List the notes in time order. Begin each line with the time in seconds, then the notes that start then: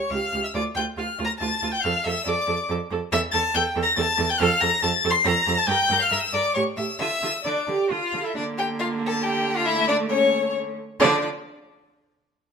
Already playing: C#5 C#6
0.10 C#2 G4 F5 F6
0.33 C#2 G4
0.44 E5 E6
0.54 D2 F4 D5 D6
0.75 D2 F4 G5 G6
0.97 D2 F4 F5 F6
1.18 D2 F4
1.25 A#5 A#6
1.38 D2 F4 A5 A6
1.63 D2 F4
1.72 G5 G6
1.82 F2 A4 F5 F6
2.04 F2 A4 E5 E6
2.26 F2 A4 D5 D6
2.47 F2 A4
2.69 F2 A4
2.91 F2 A4
3.12 E2 A4 E5 E6
3.31 E2 A4 A5 A6
3.54 E2 A4 G5 G6
3.76 E2 A4
3.83 A#5 A#6
3.96 E2 A4 A5 A6
4.18 E2 A4
4.29 G5 G6
4.39 F2 A4 F5 F6
4.61 F2 A4 A#5 A#6
4.82 F2 A4 A5 A6
5.04 F2 A4
5.10 C6 C7
5.24 F2 A4 A#5 A#6
5.47 F2 A4
5.58 A5 A6
5.67 G2 A#4 G5 G6
5.89 G2 A#4
5.99 F5 F6
6.11 G2 A#4 E5 E6
6.33 G2 A#4 D5 D6
6.54 A2 G4 C#5 C#6
6.77 A2 G4 E5 E6
6.99 D3 F4 E5 E6
7.22 D3 F4
7.44 D3 D4 D5 D6
7.68 D3 G4
7.90 D3 F4 F5
8.13 D3
8.23 E4 A4 E5
8.35 D3 A#3 D4 D5
8.58 G4 G5
8.79 F4 F5
9.06 A4 A5
9.22 G4 G5
9.56 F4 F5
9.65 A3 E4 E5
9.88 D4 D5
10.09 C#4 C#5
11.00 D3 F3 D4 D5